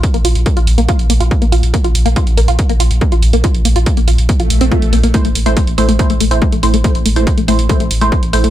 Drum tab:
HH |xxoxxxoxxxoxxxox|xxoxxxoxxxoxxxox|xxoxxxoxxxoxxxox|xxoxxxoxxxoxxxox|
BD |o---o---o---o---|o---o---o---o---|o---o---o---o---|o---o---o---o---|

HH |xxoxxxoxxxoxxxox|
BD |o---o---o---o---|